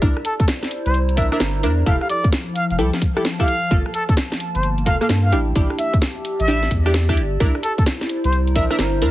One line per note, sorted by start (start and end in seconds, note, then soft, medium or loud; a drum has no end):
0.00 0.14 C2 medium
0.00 0.19 D4 medium
0.00 0.19 E4 medium
0.00 1.87 E4 medium
0.00 0.77 G4 medium
0.00 0.19 A#4 medium
0.00 0.77 D5 medium
0.00 kick loud
0.00 closed hi-hat medium
0.17 cross-stick medium
0.25 0.34 A4 medium
0.25 open hi-hat loud
0.29 2.62 C5 medium
0.40 0.45 A4 medium
0.40 kick loud
0.40 closed hi-hat medium
0.48 snare loud
0.48 closed hi-hat medium
0.63 snare medium
0.71 open hi-hat loud
0.86 1.19 C2 medium
0.86 0.98 C5 medium
0.86 1.87 A#5 medium
0.86 closed hi-hat soft
0.94 closed hi-hat medium
1.09 closed hi-hat soft
1.17 1.30 A#1 medium
1.17 1.29 D4 medium
1.17 1.29 E4 medium
1.17 1.29 A#4 medium
1.17 1.27 E5 medium
1.17 kick medium
1.17 open hi-hat loud
1.32 1.61 D4 medium
1.32 1.61 E4 medium
1.32 1.61 A#4 medium
1.32 1.37 E5 medium
1.32 cross-stick medium
1.40 1.65 G1 medium
1.40 snare loud
1.40 closed hi-hat medium
1.63 1.84 E2 medium
1.63 1.85 D4 medium
1.63 1.85 E4 medium
1.63 1.85 A#4 medium
1.63 open hi-hat loud
1.86 1.99 F1 medium
1.86 5.33 F3 medium
1.86 2.77 E4 medium
1.86 2.77 G4 medium
1.86 2.77 A4 medium
1.86 1.96 F5 medium
1.86 kick loud
1.86 closed hi-hat medium
2.01 2.07 F5 medium
2.01 cross-stick soft
2.10 2.27 D5 medium
2.10 open hi-hat medium
2.24 kick loud
2.24 closed hi-hat medium
2.33 snare loud
2.33 closed hi-hat medium
2.54 2.65 F5 medium
2.54 7.40 A5 medium
2.54 open hi-hat loud
2.70 2.80 F1 medium
2.70 2.76 F5 medium
2.70 closed hi-hat soft
2.79 2.91 C2 medium
2.79 2.91 E4 medium
2.79 2.91 G4 medium
2.79 2.91 A4 loud
2.79 closed hi-hat medium
2.94 snare medium
2.94 closed hi-hat soft
3.02 kick medium
3.02 open hi-hat loud
3.17 3.23 E4 medium
3.17 3.23 G4 medium
3.17 3.23 A4 medium
3.17 cross-stick medium
3.25 snare loud
3.25 closed hi-hat medium
3.40 3.53 E4 medium
3.40 3.53 G4 medium
3.40 3.53 A4 loud
3.40 3.77 F5 medium
3.40 kick medium
3.40 cross-stick medium
3.48 open hi-hat loud
3.71 3.83 G1 medium
3.71 3.88 A#3 medium
3.71 3.89 F4 medium
3.71 3.89 A4 medium
3.71 kick loud
3.71 closed hi-hat medium
3.86 cross-stick soft
3.94 4.04 A4 medium
3.94 open hi-hat loud
4.09 4.14 A4 medium
4.09 kick loud
4.09 closed hi-hat medium
4.17 snare loud
4.17 closed hi-hat medium
4.32 5.32 A#3 medium
4.32 snare medium
4.40 open hi-hat loud
4.55 4.88 G1 medium
4.55 4.67 C5 medium
4.55 closed hi-hat soft
4.63 closed hi-hat medium
4.78 closed hi-hat soft
4.86 4.99 F1 medium
4.86 4.99 A#3 medium
4.86 4.99 F4 medium
4.86 4.99 A4 medium
4.86 4.96 F5 medium
4.86 kick medium
4.86 open hi-hat loud
5.01 5.31 A#3 medium
5.01 5.31 F4 medium
5.01 5.31 A4 medium
5.01 5.07 F5 medium
5.01 cross-stick medium
5.09 5.34 G2 medium
5.09 snare loud
5.09 closed hi-hat medium
5.25 5.39 F5 medium
5.32 5.53 A1 medium
5.32 5.54 D4 medium
5.32 5.54 E4 medium
5.32 8.15 G4 medium
5.32 5.54 G4 medium
5.32 open hi-hat loud
5.56 5.68 A1 medium
5.56 6.46 D4 medium
5.56 6.46 E4 medium
5.56 6.46 G4 loud
5.56 kick loud
5.56 closed hi-hat medium
5.70 cross-stick soft
5.79 5.96 E5 medium
5.79 open hi-hat loud
5.93 kick loud
5.93 closed hi-hat medium
5.98 8.05 D5 medium
6.02 snare loud
6.02 closed hi-hat medium
6.25 open hi-hat loud
6.40 6.69 A1 medium
6.40 6.71 E5 medium
6.40 closed hi-hat soft
6.48 6.60 D4 medium
6.48 6.60 E4 medium
6.48 6.60 G4 loud
6.48 closed hi-hat medium
6.63 snare medium
6.63 closed hi-hat soft
6.71 7.19 E2 loud
6.71 kick medium
6.71 open hi-hat loud
6.86 6.93 D4 medium
6.86 6.93 E4 medium
6.86 6.93 G4 medium
6.86 cross-stick medium
6.94 snare loud
6.94 closed hi-hat medium
7.09 7.22 D4 medium
7.09 7.22 E4 medium
7.09 7.22 G4 loud
7.09 kick medium
7.09 cross-stick soft
7.17 7.38 G1 loud
7.17 open hi-hat loud
7.40 7.53 C2 loud
7.40 7.58 D4 medium
7.40 7.58 E4 medium
7.40 9.11 E4 medium
7.40 7.58 A#4 medium
7.40 kick loud
7.40 closed hi-hat medium
7.55 cross-stick medium
7.60 7.73 A4 medium
7.60 9.11 C5 medium
7.60 open hi-hat loud
7.78 7.84 A4 medium
7.78 kick loud
7.78 closed hi-hat medium
7.86 snare loud
7.86 closed hi-hat medium
8.01 snare medium
8.09 open hi-hat loud
8.24 8.57 C2 medium
8.24 8.37 C5 medium
8.24 9.11 A#5 medium
8.24 closed hi-hat soft
8.32 closed hi-hat medium
8.47 closed hi-hat soft
8.56 8.68 A#1 loud
8.56 8.68 D4 medium
8.56 8.68 E4 medium
8.56 8.68 A#4 medium
8.56 8.65 E5 medium
8.56 kick medium
8.56 open hi-hat loud
8.70 9.00 D4 medium
8.70 9.00 E4 medium
8.70 9.00 A#4 medium
8.70 8.76 E5 medium
8.70 cross-stick medium
8.79 9.03 G1 medium
8.79 snare loud
8.79 closed hi-hat medium
9.02 9.11 E2 medium
9.02 9.11 D4 medium
9.02 9.11 E4 medium
9.02 9.11 A#4 medium
9.02 open hi-hat loud